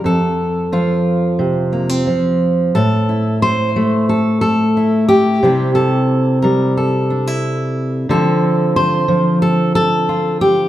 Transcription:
0.04 F2 A4
0.72 F3 F4
1.39 C3
1.73 A#3
1.89 C4
2.07 F3
2.75 A2 A4
3.09 E4
3.42 C5
3.76 A3
4.09 A4
4.41 A4
4.77 E4
5.08 G4
5.43 C3 G3 C4 E4
5.75 A4
6.42 G3 A#4
6.77 A4
7.10 D4
7.27 E4
8.09 D3 F3 C4 F4 A4
8.76 C5
9.08 F3
9.42 A4
9.75 A4
10.09 F4
10.41 G4

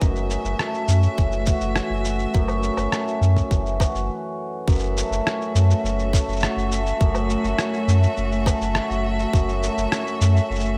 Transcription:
Already playing: E3 B3 C#4 D#4 G#4
0.01 F#1 F#2 A3 F#4 E5, kick, shaker
0.16 shaker
0.30 C#4, shaker
0.45 F#1, shaker
0.59 A3, cross-stick, shaker
0.74 shaker
0.88 F#2 C#4, shaker
1.03 shaker
1.17 F#1 E3, kick, shaker
1.32 shaker
1.46 F#4, kick, shaker
1.61 F#1, shaker
1.76 C#4, cross-stick, shaker
1.90 F#1
2.05 F#4, shaker
2.19 shaker
2.34 F#1 F#2, kick, shaker
2.48 low woodblock, shaker
2.63 C#4, shaker
2.77 F#1, low woodblock, shaker
2.92 A3, cross-stick, shaker
3.08 shaker
3.21 F#2 C#4, shaker
3.37 kick, shaker
3.51 F#1 E3, kick, shaker
3.66 shaker
3.80 F#4, kick, low woodblock, shaker
3.95 F#1, shaker
4.68 F#1 F#2 A3 F#4 E5, kick, shaker
4.71 shaker
4.75 shaker
4.79 shaker
4.83 shaker
4.97 A3, shaker
5.11 F#1, shaker
5.26 C#4, cross-stick, shaker
5.41 shaker
5.54 F#2 A3, shaker
5.70 shaker
5.84 F#1 C#4, shaker
5.99 shaker
6.13 A3, kick, shaker
6.28 F#1, shaker
6.32 shaker
6.36 shaker
6.40 F#4, cross-stick, shaker
6.43 shaker
6.57 F#1, shaker
6.72 A3, shaker
6.86 shaker
7.00 F#1 F#2, kick, shaker
7.15 low woodblock, shaker
7.30 A3, shaker
7.44 F#1, shaker
7.59 C#4, cross-stick, shaker
7.74 shaker
7.88 F#2 A3, shaker
8.03 shaker
8.17 F#1 C#4, shaker
8.32 shaker
8.45 A3, kick, low woodblock, shaker
8.61 F#1, shaker
8.75 F#4, cross-stick, shaker
8.90 F#1, shaker
9.04 A3
9.19 shaker
9.33 F#1 F#2, kick, shaker
9.49 shaker
9.62 A3, shaker
9.78 F#1, shaker
9.91 C#4, cross-stick, shaker
10.07 shaker
10.21 F#2 A3, shaker
10.36 shaker
10.50 F#1 C#4, shaker
10.55 shaker
10.60 shaker
10.65 shaker

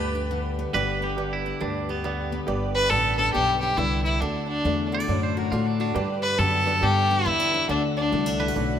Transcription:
Already playing: D2 G2 D3 B3 D4 G4 B4
0.15 D4
0.31 D3
0.59 B3
0.73 G1 G2 D3 B3 D4 G4 B4 D5
1.02 B3 G4
1.17 D3 G4 B4 D5
1.33 E4
1.46 D4
1.61 D2 G2 D4 G4 B4 D5
1.89 B3 G4
2.04 D3 B3 G4 B4 D5
2.32 B3
2.47 G1 G2 G4 B4 D5
2.75 B4
2.90 A1 D3 B3 G4 A4 B4 D5
3.18 D4 G4 A4 B4 D5
3.33 B1 G2 B3 G4 B4 D5
3.61 D4 G4
3.77 C2 D3 D4 E4 G4 B4 D5
4.04 D4 E4
4.20 D2 D3 D4 F#4 A4 D5
4.48 D4
4.65 E2 A3 D4 F#4 A4 D5
4.92 E4 F#4 A4 D5
5.00 F#4
5.08 F#2 A2 D4 F#4 A4 D5
5.23 C5
5.37 F#4 A#4
5.51 A2 A3 F4 F#4 A4 D5
5.66 D4
5.80 D4 F#4
5.94 G2 G4 B4 D5
6.22 B4
6.38 F#2 D3 B3 G4 A4 B4 D5
6.65 D4 G4 B4 D5
6.81 G2 B3 G4 B4 D5
7.11 D4
7.25 E2 D3 B3 E4 G4 B4 D5
7.40 D4
7.54 D4
7.68 D2 D3 D4 F#4 A4 D5
7.97 D4
8.12 C2 A3 B3 F#4 A4 D5
8.26 D4
8.40 E4 F#4 A4 B4 D5
8.48 F#4
8.55 B1 A2 D4 F#4 A4 D5

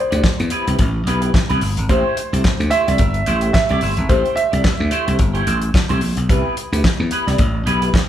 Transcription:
Already playing: C5
0.11 D2 B3 E4 G4 D5, closed hi-hat
0.23 muted clean electric guitar stroke, kick, snare, clap
0.39 E2, muted clean electric guitar stroke, closed hi-hat
0.50 B3 E4 G4 B4, closed hi-hat
0.67 C2 B3 E4 G4 B4, closed hi-hat
0.78 A1, muted clean electric guitar stroke, kick, closed hi-hat
0.94 muted clean electric guitar stroke
1.07 B1 B3 E4 G4 B4, closed hi-hat
1.22 B3 E4 G4 B4, closed hi-hat
1.34 muted clean electric guitar stroke, kick, snare, clap
1.49 C2 B3 E4 G4 B4, closed hi-hat
1.61 G1, muted clean electric guitar stroke, open hi-hat
1.77 G#1, muted clean electric guitar stroke, closed hi-hat
1.89 A1 A3 E4 G4 C5, kick, closed hi-hat
2.17 muted clean electric guitar stroke, closed hi-hat
2.33 C2 A3 E4 G4 C5, closed hi-hat
2.44 muted clean electric guitar stroke, kick, snare, clap
2.59 D2, muted clean electric guitar stroke, closed hi-hat
2.70 A3 E4 G4 C5 E5, closed hi-hat
2.87 C2 A3 E4 G4 D5, closed hi-hat
2.98 G1, muted clean electric guitar stroke, kick, closed hi-hat
3.14 muted clean electric guitar stroke, closed hi-hat
3.26 A1 A3 E4 G4 C5, closed hi-hat
3.41 A3 E4 G4 C5, closed hi-hat
3.53 E5, muted clean electric guitar stroke, kick, snare, clap
3.69 C2 A3 E4 G4 D5, closed hi-hat
3.81 G1 A3 E4 G4 C5, open hi-hat
3.97 G#1, muted clean electric guitar stroke, closed hi-hat
4.09 A1 A3 E4 G4 C5, kick, closed hi-hat
4.26 closed hi-hat
4.36 E5, muted clean electric guitar stroke, closed hi-hat
4.51 C2 A3 E4 G4 D5, closed hi-hat
4.64 muted clean electric guitar stroke, kick, snare, clap
4.79 D2, muted clean electric guitar stroke
4.91 A3 E4 G4 C5, closed hi-hat
5.06 C2 A3 E4 G4 C5, closed hi-hat
5.18 G1, muted clean electric guitar stroke, kick, closed hi-hat
5.34 A3 E4 G4 C5, closed hi-hat
5.46 A1 A3 E4 G4 C5, closed hi-hat
5.61 muted clean electric guitar stroke, closed hi-hat
5.74 muted clean electric guitar stroke, kick, snare, clap
5.89 C2 A3 E4 G4 C5, closed hi-hat
6.01 A#1, muted clean electric guitar stroke, open hi-hat
6.17 B1, muted clean electric guitar stroke, closed hi-hat
6.29 C2 B3 E4 G4 B4, kick, closed hi-hat
6.57 muted clean electric guitar stroke, closed hi-hat
6.72 D2 B3 E4 G4 B4, closed hi-hat
6.84 muted clean electric guitar stroke, kick, snare, clap
6.99 E2, muted clean electric guitar stroke
7.11 B3 E4 G4 B4, closed hi-hat
7.27 C2 B3 E4 G4 D5, snare, closed hi-hat
7.38 A1, muted clean electric guitar stroke, kick, closed hi-hat
7.54 muted clean electric guitar stroke
7.66 B1 B3 E4 G4 B4, closed hi-hat
7.81 B3 E4 G4 B4, closed hi-hat
7.94 muted clean electric guitar stroke, kick, snare, clap

